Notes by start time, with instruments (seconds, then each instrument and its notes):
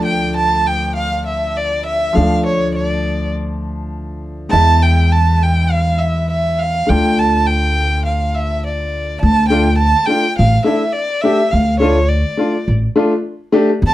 Already playing: upright bass D2, upright piano F3 A3 D4
0.05 violin G5
0.36 violin A5
0.66 violin G5
0.96 violin F5
1.26 violin E5
1.57 violin D5
1.86 violin E5
2.13 upright bass D2, upright piano F3 A3 D4, violin F5
2.46 violin C#5
2.75 violin D5
4.49 upright bass E2, upright piano G#3 B3, violin A5
4.53 upright piano E4
4.83 violin G5
5.12 violin A5
5.42 violin G5
5.70 violin F5
5.99 violin E5
6.30 violin E5
6.59 violin F5
6.87 upright bass D2, upright piano A3 D4 F4, violin G5
7.19 violin A5
7.46 violin G5
8.05 violin F5
8.35 violin E5
8.66 violin D5
9.21 upright bass D2, violin A5
9.48 upright piano A3 D4 F4, violin G5
9.78 violin A5
10.06 upright piano A3 D4 F4, violin G5
10.38 upright bass A1, violin F5
10.64 upright piano A3 D4 E4, violin E5
10.92 violin D5
11.21 upright piano A3 D4, violin E5
11.25 upright piano G4
11.51 upright bass D2, violin F5
11.80 upright piano A3 D4 F4, violin C#5
12.08 violin D5
12.37 upright piano A3 D4 F4
12.68 upright bass A1
12.96 upright piano A3 D4 F4
13.52 upright piano A3 D4 G4
13.82 upright bass E2
13.87 violin A5